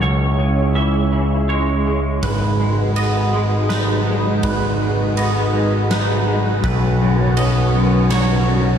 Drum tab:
RD |------|x-x-x-|x-x-x-|x-x-x-|
SD |------|----o-|----o-|----o-|
BD |------|o-----|o-----|o-----|